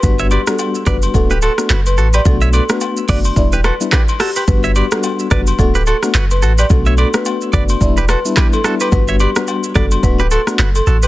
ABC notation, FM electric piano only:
X:1
M:4/4
L:1/16
Q:"Swing 16ths" 1/4=108
K:D
V:1 name="FM electric piano"
[G,B,DF]3 [G,B,DF]3 [G,B,DF]2 [A,B,DF] z2 [A,B,DF] z4 | [A,B,DF]3 [A,B,DF]3 [A,B,DF]2 [G,B,DE] z2 [G,B,DE] z4 | [G,B,DF]3 [G,B,DF]3 [G,B,DF]2 [A,B,DF] z2 [A,B,DF] z4 | [A,B,DF]3 [A,B,DF]3 [A,B,DF]2 [G,B,DE] z2 [G,B,DE]3 [G,B,DE]2 |
[G,B,DF]3 [G,B,DF]3 [G,B,DF]2 [A,B,DF] z2 [A,B,DF] z4 |]